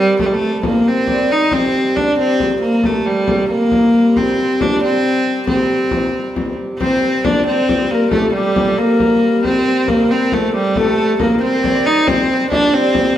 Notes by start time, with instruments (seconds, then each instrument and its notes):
Already playing: hurdy-gurdy C3 G3, harp G4 A#4 C5
0.00 viola da gamba G3
0.19 viola da gamba A3, harp A4, frame drum
0.27 viola da gamba G3
0.33 viola da gamba A3, harp A4
0.63 viola da gamba A#3, harp A#4, frame drum
0.87 viola da gamba C4, harp C5
1.07 harp D5, frame drum
1.30 viola da gamba D#4, harp D#5
1.51 hurdy-gurdy C3 G3, viola da gamba C4, harp C5, frame drum
1.95 viola da gamba D4, harp D5, frame drum
2.18 viola da gamba C4, harp C5, frame drum
2.39 harp C5, frame drum
2.62 viola da gamba A#3, harp A#4, frame drum
2.78 harp A#4
2.83 viola da gamba A3, harp A4, frame drum
3.06 viola da gamba G3, harp G4
3.27 harp A4, frame drum
3.49 viola da gamba A#3, harp A#4, frame drum
3.72 frame drum
3.94 frame drum
4.16 viola da gamba C4, harp C5, frame drum
4.37 harp C5
4.60 viola da gamba D4, harp D5, frame drum
4.82 viola da gamba C4, harp C5, frame drum
5.26 frame drum
5.47 viola da gamba C4, harp C5, frame drum
5.70 frame drum
5.91 frame drum
6.36 frame drum
6.59 frame drum
6.79 hurdy-gurdy C3 G3, viola da gamba C4, harp C5, recorder C5, frame drum
7.24 viola da gamba D4, harp D5, recorder D5, frame drum
7.46 viola da gamba C4, recorder C5, harp C5, frame drum
7.69 frame drum
7.90 viola da gamba A#3, recorder A#4 C5, frame drum
8.11 viola da gamba A3, recorder A4, harp A4, frame drum
8.18 recorder G4
8.25 recorder A4
8.33 viola da gamba G3, recorder G4, harp G4
8.56 harp A4, frame drum
8.73 harp C5
8.78 viola da gamba A#3, recorder A#4, harp A#4, frame drum
9.00 frame drum
9.23 frame drum
9.44 viola da gamba C4, harp C5, recorder C5, frame drum
9.64 recorder C5, harp C5
9.87 viola da gamba A#3, recorder A#4, harp A#4, frame drum
10.09 viola da gamba C4, harp C5, recorder C5, frame drum
10.32 viola da gamba A3, recorder A4, frame drum
10.53 viola da gamba G3, recorder G4, harp G4, frame drum
10.76 viola da gamba A3, harp A4, recorder A4, frame drum
10.97 recorder A4
11.19 viola da gamba A#3, harp A#4, recorder A#4, frame drum
11.40 viola da gamba C4, recorder C5, harp C5, frame drum
11.63 recorder D5, harp D5, frame drum
11.86 viola da gamba D#4, harp D#5
12.07 hurdy-gurdy C3 G3, viola da gamba C4, recorder C5, harp C5, frame drum
12.51 viola da gamba D4, harp D5, recorder D#5, frame drum
12.56 recorder D5
12.74 viola da gamba C4, recorder C5, harp C5, frame drum
12.95 frame drum